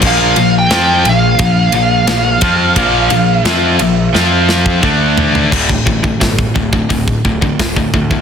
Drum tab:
CC |x---------------|----------------|x---------------|
RD |--x-x-x-x-x-x-x-|x-x-x-x---------|----------------|
HH |----------------|----------------|----o---o---o---|
SD |----o-------o---|----o---o-o-----|----o-------o---|
FT |----------------|--------------oo|----------------|
BD |o-------o-----o-|o----------oo---|oooooooooooooooo|